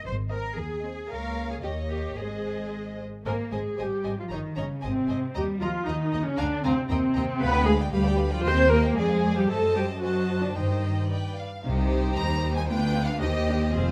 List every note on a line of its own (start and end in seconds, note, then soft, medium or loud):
0.05 0.46 G#1 medium
0.05 0.14 C5 medium
0.31 0.51 C4 medium
0.31 0.57 A#4 medium
0.31 0.51 C5 medium
0.31 0.50 D#5 medium
0.57 0.99 D#2 medium
0.57 1.10 G#4 medium
0.83 1.03 C4 medium
0.83 1.04 C5 medium
0.83 1.03 D#5 soft
1.09 1.60 C#2 medium
1.09 1.59 A#3 medium
1.09 1.50 A#4 medium
1.09 1.60 C#5 soft
1.09 1.59 F5 medium
1.50 1.56 G#4 medium
1.62 2.18 D#2 medium
1.62 2.16 A#3 soft
1.62 1.71 G4 medium
1.62 2.17 C#5 soft
1.62 2.16 D#5 medium
1.90 2.17 G4 medium
2.17 3.04 G#1 soft
2.17 3.05 G#3 medium
2.17 2.99 G#4 medium
2.17 3.06 C5 soft
2.17 3.04 D#5 soft
3.25 3.34 G#1 medium
3.25 3.50 A#3 medium
3.25 3.34 A#4 medium
3.25 3.34 C5 medium
3.25 3.34 D#5 soft
3.25 3.34 G#5 medium
3.51 3.60 G#1 medium
3.51 3.78 G#3 medium
3.51 3.78 G#4 medium
3.51 3.60 C5 soft
3.51 3.60 D#5 soft
3.51 3.59 G#5 soft
3.78 3.87 G#1 medium
3.78 4.17 G3 medium
3.78 4.18 G4 medium
3.78 3.86 C5 soft
3.78 3.86 D#5 soft
3.78 3.87 G#5 soft
4.04 4.14 G#1 soft
4.04 4.12 C5 soft
4.04 4.12 D#5 soft
4.04 4.13 G#5 soft
4.18 4.31 F3 medium
4.18 4.24 F4 medium
4.30 4.40 G1 medium
4.30 4.57 D#3 medium
4.30 4.39 D#4 medium
4.30 4.38 C#5 medium
4.30 4.39 D#5 medium
4.30 4.38 A#5 medium
4.56 4.66 G1 medium
4.56 4.83 C#3 medium
4.56 4.66 C#4 medium
4.56 4.65 C#5 medium
4.56 4.65 D#5 medium
4.56 4.64 A#5 medium
4.81 4.92 G#1 medium
4.81 5.35 C3 medium
4.81 5.35 C4 medium
4.81 4.92 C5 medium
4.81 4.92 D#5 medium
4.81 4.89 G#5 medium
5.08 5.18 G#1 medium
5.08 5.18 C5 medium
5.08 5.17 D#5 soft
5.08 5.16 G#5 soft
5.35 5.44 D#2 medium
5.35 5.61 G3 medium
5.35 5.45 G4 medium
5.35 5.44 D#5 medium
5.35 5.43 A#5 medium
5.61 5.69 D#2 medium
5.61 5.87 F3 medium
5.61 5.87 F4 medium
5.61 5.70 D#5 medium
5.61 5.69 A#5 medium
5.86 5.95 D#2 medium
5.86 6.25 D#3 medium
5.86 6.26 D#4 medium
5.86 5.96 D#5 medium
5.86 5.94 A#5 medium
6.12 6.21 D#2 medium
6.12 6.23 D#5 medium
6.12 6.20 A#5 soft
6.27 6.39 C#3 medium
6.27 6.39 C#4 medium
6.38 6.47 D2 medium
6.38 6.64 D3 medium
6.38 6.64 D4 loud
6.38 6.46 F5 medium
6.38 6.46 G#5 medium
6.38 6.46 A#5 medium
6.64 6.73 D2 medium
6.64 6.89 C3 medium
6.64 6.88 C4 medium
6.64 6.73 F5 medium
6.64 6.73 G#5 medium
6.64 6.72 A#5 medium
6.89 6.98 D#2 medium
6.89 7.40 C3 medium
6.89 7.40 C4 medium
6.89 6.99 D#5 medium
6.89 6.98 G5 medium
6.89 6.97 A#5 medium
7.15 7.24 D#2 medium
7.15 7.24 D#5 medium
7.15 7.24 G5 medium
7.15 7.23 A#5 medium
7.41 7.87 D2 medium
7.41 7.67 B3 loud
7.41 7.67 B4 loud
7.41 7.53 B4 medium
7.41 7.53 F5 medium
7.41 7.53 B5 medium
7.54 7.67 D5 medium
7.54 7.67 G5 medium
7.66 7.93 G#3 medium
7.66 7.74 G#4 loud
7.66 7.80 B4 medium
7.66 7.79 F5 medium
7.66 7.80 B5 medium
7.80 7.93 D5 medium
7.80 7.92 G5 medium
7.80 7.93 G5 medium
7.91 8.38 D2 medium
7.91 8.31 G3 medium
7.91 8.30 G4 medium
7.91 8.04 B4 medium
7.91 8.04 F5 medium
7.91 8.05 B5 medium
8.05 8.18 D5 medium
8.05 8.18 G5 medium
8.05 8.19 G5 medium
8.17 8.31 B4 medium
8.17 8.31 F5 medium
8.17 8.31 B5 medium
8.31 8.44 F3 medium
8.31 8.44 F4 loud
8.31 8.44 D5 medium
8.31 8.44 G5 medium
8.43 8.90 D#2 loud
8.43 8.70 C4 loud
8.43 8.57 G4 medium
8.43 8.70 C5 loud
8.43 8.56 D#5 medium
8.43 8.56 C6 medium
8.56 8.71 C5 medium
8.56 8.69 G5 medium
8.69 8.96 A#3 loud
8.69 8.83 G4 medium
8.69 8.96 A#4 loud
8.69 8.84 D#5 medium
8.69 8.84 C6 medium
8.84 8.97 C5 medium
8.84 8.97 G5 medium
8.96 9.43 F2 medium
8.96 9.36 G#3 medium
8.96 9.35 G#4 loud
8.96 9.09 G#4 medium
8.96 9.09 D5 medium
8.96 9.08 G#5 medium
9.09 9.23 C5 medium
9.09 9.22 F5 medium
9.22 9.36 G#4 medium
9.22 9.36 D5 medium
9.22 9.35 G#5 medium
9.36 9.49 G3 medium
9.36 9.49 G4 medium
9.36 9.48 C5 medium
9.36 9.49 F5 medium
9.48 10.52 F#2 medium
9.48 9.57 A3 medium
9.48 9.75 A4 loud
9.48 9.98 C5 medium
9.48 9.98 D#5 medium
9.48 9.98 A5 medium
9.74 9.83 G3 medium
9.74 9.82 G4 medium
10.01 10.41 F#3 medium
10.01 10.42 F#4 medium
10.01 10.55 C5 medium
10.01 10.55 D#5 medium
10.01 10.55 A5 medium
10.43 10.56 D3 medium
10.43 10.57 D4 medium
10.56 11.44 G2 medium
10.56 11.11 D#3 medium
10.56 11.10 D#4 medium
10.56 11.09 C5 medium
10.56 11.09 D#5 medium
10.56 11.08 G5 medium
11.09 11.43 B4 medium
11.09 11.44 D5 medium
11.09 11.35 G5 medium
11.37 11.64 F5 medium
11.64 12.13 C2 medium
11.64 12.13 C3 medium
11.64 12.65 G3 medium
11.64 12.65 D#4 medium
11.64 12.65 G4 medium
11.64 12.65 C5 medium
12.16 12.69 D#2 medium
12.16 12.53 A#5 loud
12.57 12.69 G#5 medium
12.68 13.21 D2 medium
12.68 12.77 B3 medium
12.68 13.21 D4 medium
12.68 13.21 F4 medium
12.68 13.21 B4 medium
12.68 13.07 G5 loud
12.95 13.03 C4 medium
13.09 13.21 F5 loud
13.20 13.72 D#2 medium
13.20 13.73 D#2 medium
13.20 13.29 D#4 medium
13.20 13.71 G4 medium
13.20 13.72 G4 medium
13.20 13.71 C5 medium
13.20 13.71 D#5 medium
13.48 13.56 D4 medium
13.72 13.91 F1 medium
13.72 13.91 F2 medium
13.72 13.91 C4 medium
13.72 13.91 F4 medium
13.72 13.91 G#4 medium
13.72 13.91 C5 medium